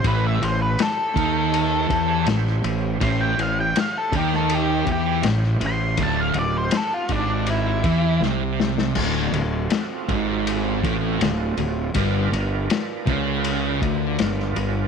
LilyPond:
<<
  \new Staff \with { instrumentName = "Lead electric guitar" } { \time 4/4 \key a \dorian \tempo 4 = 81 b'16 e''16 bis'16 b'16 a'2 r4 | bis''16 g''16 f''16 g''16 f''16 a'16 g'16 a'16 g'8 g'8 r8 bis''8 | a''16 eis''16 d''16 c''16 a'16 eis'16 d'8 e'4 r4 | r1 |
r1 | }
  \new Staff \with { instrumentName = "Tonewheel organ" } { \time 4/4 \key a \dorian <g' bis' cis'' e''>1 | <g' bis' cis'' e''>1 | <c' eis' fis' a'>2 <bis e' g'>2 | <c' eis' fis' a'>1 |
<f' ais' b' d''>1 | }
  \new Staff \with { instrumentName = "Distorted electric guitar" } { \clef bass \time 4/4 \key a \dorian a,8 a,8 r8 ees4 e8 a,8 a,8 | a,8 a,8 r8 ees4 e8 a,8 a,8 | d,8 d,8 r8 gis,4 e8 bis,4 | d,8 d,8 r8 gis,4 a,8 d,8 d,8 |
g,8 g,8 r8 cis4 d8 g,8 g,8 | }
  \new Staff \with { instrumentName = "Fingered electric bass" } { \clef bass \time 4/4 \key a \dorian a,,8 a,,8 r8 ees,4 e,8 a,,8 a,,8 | a,,8 a,,8 r8 ees,4 e,8 a,,8 a,,8 | d,,8 d,,8 r8 gis,,4 e,8 bis,,4 | d,,8 d,,8 r8 gis,,4 a,,8 d,,8 d,,8 |
g,,8 g,,8 r8 cis,4 d,8 g,,8 g,,8 | }
  \new DrumStaff \with { instrumentName = "Drums" } \drummode { \time 4/4 <bd cymr>8 cymr8 <cymr sn>8 <bd cymr>8 cymr8 <bd cymr>8 <cymr sn>16 sn16 cymr8 | <bd cymr>8 cymr8 <cymr sn>8 <bd cymr>16 sn16 cymr8 <bd cymr>8 <cymr sn>16 sn16 cymr8 | <bd cymr>8 cymr8 <cymr sn>8 <bd cymr>8 cymr8 <bd cymr>8 sn8 sn16 sn16 | <cymc bd>8 cymr8 <cymr sn>8 <bd cymr>8 cymr8 <bd cymr>8 <cymr sn>8 cymr8 |
<bd cymr>8 cymr8 <cymr sn>8 <bd cymr>8 cymr8 <bd cymr>8 <cymr sn>16 sn16 cymr8 | }
>>